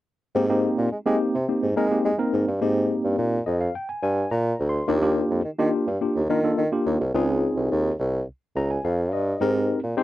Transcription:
0.35 G#2 A#3 C4 D#4 G4
0.49 A#3 C4 D#4 G4
0.78 A#2
0.92 G#3
1.06 G#3 A#3 C4 D#4 G4
1.34 C3
1.48 A#3 C4 D#4 G4
1.63 G#2
1.76 G#3 A#3 C4 D#4 A#4
1.91 A#3 C4 D#4 G4
2.05 G#3
2.18 A#3 C4 D#4 A#4
2.33 G#2
2.48 G2
2.61 G#2 A#3 C4 D#4 G4
3.04 G2
3.18 A#2
3.46 F2 D#5
3.61 F5
3.75 G5
3.89 G#5
4.03 G2 G#5
4.31 A#2 A#5
4.59 D2
4.69 C6
4.88 D#2 A#3 D4 F4 G4
5.02 A#3 D4 F4 G4
5.30 F2
5.45 D#3
5.59 D#3 A#3 D4 F4 G4
5.87 G2
6.01 A#3 D4 F4 G4
6.15 D#2
6.29 D#3 A#3 D4 F4 A#4
6.43 A#3 D4 F4 A4
6.58 D#3
6.72 A#3 D4 F4 G4
6.86 D#2
7.00 C2
7.14 C#2 C4 D#4 F4 G#4
7.57 C2
7.71 D#2
7.99 C2
8.56 C#2 A#5
8.71 G#5
8.84 F2 F5
9.12 G2 D#5
9.41 G#2 C4 D#4 G4 A#4
9.84 A#2
9.97 G#3 C4 D#4 G4 C5

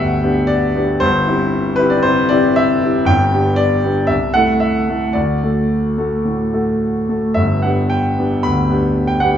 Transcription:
Already playing: G1 D2 G2 B3 D4 G4 D5 E5 F#5 G5
0.23 B3 D4 G4
0.47 D5
0.75 B3 D4 G4
1.00 G1 G2 C5
1.27 C4 E4 G4
1.76 C4 E4 G4 B4
1.90 D5
2.03 C3 C5
2.29 C4 E4 G4 D5
2.56 E5
2.83 C4 E4 G4
3.05 G1 G2 G5
3.33 B3 D4 G4
3.56 D5
3.84 B3 D4 G4
4.07 C2 E5
4.34 A3 E4 A4 F#5
4.60 E5
4.89 A3 E4 A4
5.13 D2 D5
5.43 A3 F#4 A4
5.97 A3 F#4 A4
6.25 A2
6.53 A3 F#4 A4
7.09 A3 F#4 A4
7.34 G1 G2 E5
7.62 B3 D4 G4 F#5
7.90 G5
8.18 B3 D4 G4
8.43 D2 B5
8.70 B3 D4 G4
9.07 G5
9.20 B3 D4 G4 F#5

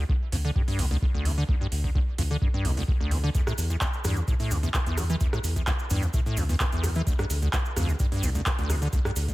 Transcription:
0.09 D2, kick
0.32 D2 F2, open hi-hat
0.45 D3
0.56 G2, kick
0.68 G2, open hi-hat
0.79 C2 D2, open hi-hat
0.91 D2
1.02 D2, kick
1.14 D2
1.25 D2 F2, open hi-hat
1.38 D3
1.49 D2, kick
1.61 G2
1.72 D2, open hi-hat
1.84 D2, kick
1.95 D2, kick
2.18 D2 F2, open hi-hat
2.31 D3
2.42 G2, kick
2.54 G2
2.65 C2 D2, open hi-hat
2.77 D2, open hi-hat
2.88 D2, kick
3.01 D2
3.11 D2 F2, open hi-hat
3.24 D3
3.35 E2, kick, closed hi-hat, cabasa
3.47 A2, cross-stick, cabasa
3.58 E2, open hi-hat, cabasa
3.70 E2, closed hi-hat, cabasa
3.81 E2, kick, clap, closed hi-hat, cabasa
3.94 cabasa
4.04 E2 G2, cross-stick, open hi-hat, cabasa
4.16 E2, closed hi-hat, cabasa
4.28 A2, kick, closed hi-hat, cabasa
4.40 A2, open hi-hat, cabasa
4.51 D2 E2, open hi-hat, cabasa
4.63 E2, closed hi-hat, cabasa
4.74 E2, kick, clap, closed hi-hat, cabasa
4.86 E2, closed hi-hat, cabasa
4.97 E2 G2, cross-stick, open hi-hat, cabasa
5.10 E3, closed hi-hat, cabasa
5.20 E2, kick, closed hi-hat, cabasa
5.33 A2, cross-stick, cabasa
5.44 E2, open hi-hat, cabasa
5.56 E2, kick, closed hi-hat, cabasa
5.67 E2, kick, clap, closed hi-hat, cabasa
5.79 cabasa
5.90 E2 G2, open hi-hat, cabasa
6.03 E2, closed hi-hat, cabasa
6.13 A2, kick, closed hi-hat, cabasa
6.26 A2, cabasa
6.37 D2 E2, open hi-hat, cabasa
6.49 E2, open hi-hat, cabasa
6.60 E2, kick, clap, closed hi-hat, cabasa
6.72 E2, closed hi-hat, cabasa
6.83 E2 G2, cross-stick, open hi-hat, cabasa
6.95 E3, closed hi-hat, cabasa
7.07 D2, kick, closed hi-hat, cabasa
7.19 G2, cross-stick, cabasa
7.30 D2, open hi-hat, cabasa
7.42 D2, closed hi-hat, cabasa
7.53 D2, kick, clap, closed hi-hat, cabasa
7.65 cabasa
7.76 D2 F2, cross-stick, open hi-hat, cabasa
7.89 D2, closed hi-hat, cabasa
7.99 G2, kick, closed hi-hat, cabasa
8.12 G2, open hi-hat, cabasa
8.23 C2 D2, open hi-hat, cabasa
8.35 D2, closed hi-hat, cabasa
8.46 D2, kick, clap, closed hi-hat, cabasa
8.59 D2, closed hi-hat, cabasa
8.70 D2 F2, cross-stick, open hi-hat, cabasa
8.82 D3, closed hi-hat, cabasa
8.93 D2, kick, closed hi-hat, cabasa
9.05 G2, cross-stick, cabasa
9.16 D2, open hi-hat, cabasa
9.28 D2, kick, closed hi-hat, cabasa

